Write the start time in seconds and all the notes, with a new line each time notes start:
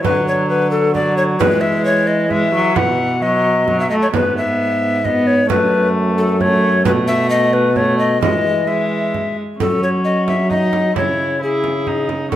0.04 D3 F#3 B4, frame drum
0.28 C#5
0.49 B4
0.71 A4
0.94 F#3 D5, frame drum
1.17 C#5
1.40 E3 G#3 B4, frame drum
1.61 E5
1.85 C#5
2.07 D#5
2.30 G#3 E5, frame drum
2.54 F#3
2.76 B2 E3 F#5, frame drum
3.22 F#3 D#5
3.68 F#3, frame drum
3.80 E5
3.90 A3 D#5
4.02 C#5
4.14 G#2 B3 B4, frame drum
4.37 E5
5.05 B3 D#5, frame drum
5.27 C#5
5.50 F#2 A3 B4, frame drum
6.18 A4
6.40 A3 C#5, frame drum
6.85 B2 A3 B4, frame drum
7.08 E5
7.30 D#5
7.53 B4
7.76 A3 C#5, frame drum
7.99 D#5
8.22 E3 G#3 D#5, frame drum
8.68 G#3 E5
9.14 frame drum
9.59 F#3 C#4 A4, frame drum
9.83 C#5
10.05 D#5
10.28 E5, frame drum
10.50 D#4 D#5, frame drum
10.73 frame drum
10.96 C#3 E4 C#5, frame drum
11.42 E4 G#4
11.64 frame drum
11.87 D#4, frame drum
12.09 frame drum
12.32 A2 C#4 A4, frame drum